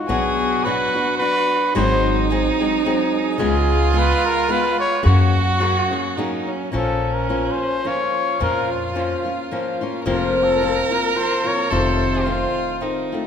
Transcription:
0.00 0.66 F#4 medium
0.08 0.82 B1 medium
0.08 0.65 B2 medium
0.08 0.65 F#3 medium
0.08 0.64 B3 medium
0.08 0.65 D4 medium
0.08 0.66 F#4 medium
0.08 0.67 G#4 medium
0.64 0.96 F#3 medium
0.64 0.95 B3 medium
0.64 0.95 D4 medium
0.64 1.75 F#4 medium
0.64 0.94 F#4 medium
0.64 1.18 B4 loud
0.95 1.20 B3 soft
0.95 1.20 D4 soft
0.95 1.21 F#4 soft
1.18 1.74 F#3 soft
1.18 1.75 B3 soft
1.18 1.75 D4 medium
1.18 1.75 F#4 medium
1.18 1.71 B4 loud
1.75 2.48 G#1 medium
1.75 2.31 G#2 medium
1.75 2.31 D#3 medium
1.75 2.29 F#3 medium
1.75 2.30 G#3 medium
1.75 2.31 C4 medium
1.75 3.42 D#4 loud
1.75 2.31 G#4 medium
1.75 2.28 C5 loud
2.30 2.60 F#3 soft
2.30 2.60 G#3 medium
2.30 2.59 C4 medium
2.30 2.59 G#4 medium
2.60 2.84 F#3 soft
2.60 2.85 G#3 soft
2.60 2.85 C4 soft
2.60 2.85 G#4 medium
2.85 3.39 F#3 medium
2.85 3.39 G#3 medium
2.85 3.39 C4 medium
2.85 3.40 G#4 medium
3.15 4.00 G#4 medium
3.38 4.12 C#2 medium
3.38 3.95 C#3 medium
3.38 3.93 G#3 medium
3.38 3.93 B3 medium
3.38 3.93 F4 medium
3.38 5.05 F4 loud
3.38 3.94 G#4 medium
3.93 4.48 G#3 medium
3.93 4.48 B3 medium
3.93 4.49 F4 medium
3.93 4.50 G#4 medium
3.98 4.27 B4 loud
4.26 4.53 A#4 medium
4.48 5.02 G#3 medium
4.48 5.03 B3 medium
4.48 5.03 F4 medium
4.48 5.02 G#4 medium
4.48 4.79 B4 loud
4.80 5.04 C#5 loud
5.03 5.78 F#2 medium
5.03 5.59 F#3 medium
5.03 5.60 A#3 medium
5.03 5.61 C#4 medium
5.03 6.19 F#4 medium
5.03 6.45 F#4 medium
5.03 5.60 G#4 medium
5.60 5.91 F#3 medium
5.60 5.91 A#3 medium
5.60 5.91 C#4 medium
5.60 5.90 G#4 medium
5.91 6.17 A#3 soft
5.91 6.17 C#4 medium
5.91 6.17 G#4 soft
6.17 6.72 F#3 medium
6.17 6.72 A#3 medium
6.17 6.73 C#4 medium
6.17 6.50 D#4 medium
6.17 6.73 G#4 medium
6.48 6.73 C#4 medium
6.72 7.47 A#1 medium
6.72 7.29 A#2 medium
6.72 7.29 F3 medium
6.72 7.29 A#3 medium
6.72 7.29 C#4 medium
6.72 7.88 C#4 medium
6.72 7.30 F4 medium
6.76 7.15 A4 medium
7.14 7.53 A#4 medium
7.29 7.84 F3 soft
7.29 7.85 A#3 medium
7.29 7.85 C#4 medium
7.29 7.86 F4 medium
7.51 7.89 C5 medium
7.85 8.40 F3 medium
7.85 8.40 A#3 medium
7.85 8.39 C#4 soft
7.85 8.41 F4 soft
7.85 10.04 F4 medium
7.85 8.42 C#5 medium
8.40 9.13 F2 medium
8.40 8.96 A#2 medium
8.40 8.95 F3 medium
8.40 8.95 A#3 medium
8.40 8.94 C#4 medium
8.40 8.96 F4 medium
8.40 8.70 A#4 medium
8.73 9.48 F4 medium
8.95 9.26 F3 medium
8.95 9.25 A#3 medium
8.95 9.25 C#4 medium
8.95 9.23 F4 medium
9.25 9.50 A#3 soft
9.25 9.51 C#4 soft
9.25 9.51 F4 soft
9.51 9.82 F3 medium
9.51 9.82 A#3 medium
9.51 9.81 C#4 medium
9.51 9.80 F4 medium
9.81 10.05 A#3 soft
9.81 10.06 C#4 soft
9.81 10.05 F4 soft
10.04 10.78 F1 loud
10.04 10.61 F2 medium
10.04 10.61 C3 medium
10.04 10.61 F3 medium
10.04 10.61 A#3 medium
10.04 10.63 C4 medium
10.04 10.63 F4 medium
10.04 10.46 F4 medium
10.04 11.72 A#4 loud
10.44 10.80 A4 medium
10.61 10.91 F3 medium
10.61 10.90 A#3 medium
10.61 10.90 C4 medium
10.61 10.90 F4 medium
10.91 11.13 F3 soft
10.91 11.14 A#3 soft
10.91 11.14 C4 soft
10.91 11.15 F4 soft
10.91 11.18 A#4 medium
11.14 11.45 F3 soft
11.14 11.45 A#3 medium
11.14 11.44 C4 soft
11.14 11.43 F4 medium
11.14 11.49 C5 medium
11.44 11.72 F3 soft
11.44 11.72 A#3 soft
11.44 11.70 C4 soft
11.44 11.71 F4 soft
11.44 11.74 C#5 loud
11.71 12.44 F1 medium
11.71 12.27 F2 medium
11.71 12.27 C3 medium
11.71 12.24 D#3 medium
11.71 12.25 A3 medium
11.71 12.26 C4 medium
11.71 12.26 F4 medium
11.71 12.25 A4 medium
11.71 13.14 C5 medium
12.24 12.79 D#3 soft
12.24 12.80 A3 soft
12.24 12.80 C4 medium
12.24 12.83 F4 medium
12.24 12.82 F4 medium
12.81 13.13 D#3 medium
12.81 13.13 A3 soft
12.81 13.12 C4 medium
12.81 13.27 D#4 medium
12.81 13.11 F4 medium
13.12 13.27 D#3 soft
13.12 13.27 A3 soft
13.12 13.27 C4 soft
13.12 13.27 F4 soft

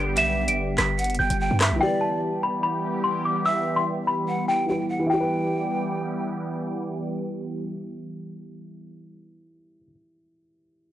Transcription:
0.00 0.18 G1 loud
0.00 1.77 D3 medium
0.00 1.75 G3 medium
0.00 1.78 G3 medium
0.00 1.78 B3 medium
0.00 1.76 G4 medium
0.00 1.78 G4 medium
0.00 1.78 B4 medium
0.00 1.80 D5 medium
0.00 0.14 D7 medium
0.17 0.50 B1 loud
0.17 0.55 E5 loud
0.17 0.47 E7 loud
0.17 closed hi-hat medium
0.48 0.77 G1 loud
0.48 0.56 D7 medium
0.48 closed hi-hat medium
0.78 1.11 G1 loud
0.78 1.17 B6 medium
0.78 cross-stick loud
0.78 clap medium
0.78 closed hi-hat medium
0.99 1.18 F#5 medium
0.99 closed hi-hat medium
1.04 closed hi-hat medium
1.10 1.19 F#1 loud
1.10 closed hi-hat medium
1.15 closed hi-hat medium
1.19 1.30 G1 loud
1.19 1.39 G5 medium
1.19 1.77 G6 medium
1.30 1.50 G1 loud
1.30 closed hi-hat medium
1.40 1.60 G5 loud
1.51 1.73 G2 loud
1.61 1.80 E5 medium
1.61 cross-stick loud
1.61 clap loud
1.61 closed hi-hat medium
1.71 1.81 B1 loud
1.76 4.62 E3 medium
1.76 4.64 E4 medium
1.81 5.07 E3 medium
1.81 5.07 G3 medium
1.81 5.07 B3 medium
1.81 5.07 G4 medium
1.81 4.66 G4 medium
1.81 2.20 D5 loud
1.81 1.98 G5 loud
1.86 4.67 B4 medium
2.01 2.40 A5 medium
2.43 2.60 B5 medium
2.63 3.02 B5 medium
3.04 3.21 C6 medium
3.25 3.43 D6 medium
3.46 3.84 E5 medium
3.46 3.75 E6 loud
3.76 3.85 C6 medium
4.07 4.46 B5 medium
4.28 4.47 F#5 medium
4.48 5.06 G5 medium
4.48 4.68 G5 medium
4.66 4.98 E3 medium
4.66 5.05 E4 soft
4.66 5.10 G4 soft
4.66 4.88 G5 medium
4.71 5.11 B4 medium
4.89 5.09 F#5 medium
4.99 9.76 E3 medium
5.06 9.15 E3 medium
5.06 9.15 G3 medium
5.06 9.15 B3 medium
5.06 9.83 E4 medium
5.06 9.15 G4 medium
5.06 6.29 G5 medium
5.13 9.86 G4 medium
5.20 9.90 B4 medium

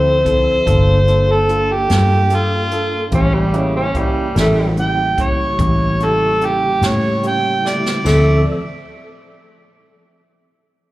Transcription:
0.00 0.63 D2 medium
0.00 0.65 F3 medium
0.00 0.16 C4 medium
0.00 0.65 C4 medium
0.00 0.16 E4 soft
0.00 0.16 F4 soft
0.00 0.17 A4 medium
0.00 0.65 A4 medium
0.00 1.32 C5 medium
0.00 0.65 E5 medium
0.24 0.56 C4 soft
0.24 0.56 E4 soft
0.24 0.57 F4 soft
0.24 0.57 A4 medium
0.24 kick medium
0.24 closed hi-hat medium
0.65 1.86 G1 medium
0.65 0.97 A#3 medium
0.65 3.11 A#3 medium
0.65 0.98 D4 medium
0.65 3.11 D4 medium
0.65 0.98 F4 medium
0.65 3.11 F4 medium
0.65 0.98 A4 medium
0.65 3.12 A4 medium
0.65 kick medium
0.65 closed hi-hat medium
1.06 1.38 A#3 medium
1.06 1.39 D4 soft
1.06 1.39 F4 soft
1.06 1.39 A4 medium
1.06 closed hi-hat medium
1.31 1.74 A4 medium
1.49 1.80 A#3 medium
1.49 1.80 D4 soft
1.49 1.80 F4 soft
1.49 1.81 A4 medium
1.49 closed hi-hat medium
1.72 2.36 G4 medium
1.89 3.09 G2 medium
1.89 2.20 A#3 medium
1.89 2.21 D4 soft
1.89 2.21 F4 medium
1.89 2.21 A4 medium
1.89 snare loud
1.89 closed hi-hat medium
2.30 2.62 A#3 medium
2.30 2.62 D4 soft
2.30 2.62 F4 soft
2.30 2.63 A4 medium
2.30 closed hi-hat medium
2.35 3.13 F4 medium
2.71 3.03 A#3 medium
2.71 3.03 D4 soft
2.71 3.03 F4 soft
2.71 3.04 A4 medium
2.71 closed hi-hat medium
3.12 4.32 A1 medium
3.12 8.02 C#3 medium
3.12 8.01 G3 medium
3.12 3.43 A#3 medium
3.12 3.43 C#4 medium
3.12 3.35 C#4 medium
3.12 3.44 E4 medium
3.12 8.01 E4 medium
3.12 3.44 G4 medium
3.12 8.02 G4 medium
3.12 kick medium
3.12 closed hi-hat medium
3.34 3.58 G3 medium
3.53 3.74 C#3 medium
3.53 3.85 A#3 medium
3.53 3.85 C#4 medium
3.53 3.85 E4 medium
3.53 3.85 G4 medium
3.53 closed hi-hat medium
3.76 3.99 C#4 medium
3.94 4.36 G3 medium
3.94 4.26 A#3 medium
3.94 4.26 C#4 medium
3.94 4.26 E4 medium
3.94 4.27 G4 medium
3.94 kick medium
3.94 closed hi-hat medium
4.35 5.55 A1 medium
4.35 4.67 C#4 medium
4.35 4.67 E4 medium
4.35 4.67 G4 medium
4.35 4.67 A#4 medium
4.35 snare medium
4.35 closed hi-hat medium
4.40 4.78 A3 medium
4.77 5.08 A#3 soft
4.77 5.08 C#4 soft
4.77 5.08 E4 soft
4.77 5.09 G4 medium
4.77 5.23 G5 medium
4.77 closed hi-hat medium
5.18 5.49 A#3 soft
5.18 5.49 C#4 soft
5.18 5.50 E4 soft
5.18 5.50 G4 soft
5.18 6.05 C#5 medium
5.18 kick medium
5.18 closed hi-hat medium
5.59 6.78 A1 medium
5.59 5.90 A#3 soft
5.59 5.90 C#4 soft
5.59 5.90 E4 soft
5.59 5.91 G4 medium
5.59 kick loud
5.59 closed hi-hat medium
5.99 6.31 A#3 soft
5.99 6.31 C#4 soft
5.99 6.31 E4 soft
5.99 6.31 G4 medium
5.99 closed hi-hat medium
6.04 6.47 A4 medium
6.41 6.72 A#3 medium
6.41 6.72 C#4 soft
6.41 6.72 E4 soft
6.41 6.73 G4 medium
6.41 closed hi-hat medium
6.45 6.88 G4 medium
6.81 8.01 A2 medium
6.81 7.12 A#3 soft
6.81 7.13 C#4 soft
6.81 7.13 E4 soft
6.81 7.13 G4 medium
6.81 snare loud
6.81 closed hi-hat medium
6.87 7.24 C#5 medium
7.23 7.54 A#3 soft
7.23 7.54 C#4 soft
7.23 7.54 E4 soft
7.23 7.54 G4 medium
7.23 closed hi-hat medium
7.27 7.69 G5 medium
7.63 7.95 A3 soft
7.63 7.94 A#3 soft
7.63 7.95 E4 soft
7.63 7.95 G4 soft
7.63 snare medium
7.68 8.06 D5 medium
7.86 snare medium
8.04 8.43 D2 medium
8.04 8.62 F3 medium
8.04 8.44 A3 medium
8.04 8.43 C4 medium
8.04 8.62 C4 medium
8.04 8.43 E4 medium
8.04 8.43 F4 medium
8.04 8.43 A4 medium
8.04 8.62 A4 medium
8.04 8.44 D5 medium
8.04 8.62 E5 medium
8.04 snare medium
8.04 floor tom medium
8.04 crash medium

